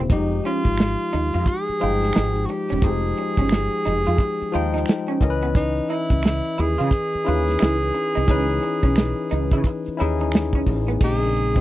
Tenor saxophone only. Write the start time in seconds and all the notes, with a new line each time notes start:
0.12 D#4
0.46 F4
1.48 G#4
2.45 F#4
2.50 G4
2.84 G#4
5.57 D#4
5.90 E4
6.60 G#4
11.04 G#4